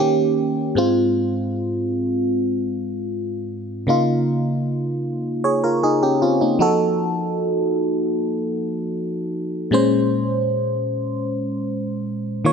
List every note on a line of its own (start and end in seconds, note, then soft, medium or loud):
0.00 0.76 D#3 medium
0.00 0.76 A#3 medium
0.00 0.76 C#4 medium
0.00 0.76 G4 medium
0.75 3.83 G#2 medium
0.75 3.84 G#3 medium
0.75 3.84 C4 medium
0.75 3.85 F4 medium
3.87 6.56 C#3 medium
3.87 5.40 A#3 medium
3.87 5.41 D#4 medium
3.87 5.41 F4 medium
5.44 5.62 G#4 medium
5.44 5.62 C#5 medium
5.64 5.82 F4 medium
5.64 5.82 A#4 medium
5.83 6.02 D#4 medium
5.83 6.01 G#4 medium
6.03 6.21 C#4 medium
6.03 6.21 G4 medium
6.22 6.40 C4 medium
6.22 6.40 F4 medium
6.41 6.78 A#3 medium
6.41 6.59 D#4 medium
6.59 9.67 F3 medium
6.59 9.68 D#4 medium
6.59 9.68 F#4 medium
6.59 9.69 A4 medium
9.71 12.40 A#2 medium
9.71 12.41 G#3 medium
9.71 12.41 C#4 medium
9.71 12.42 C5 medium
12.45 12.53 D#3 medium
12.45 12.53 A#3 medium
12.45 12.51 F4 medium
12.45 12.53 C#5 medium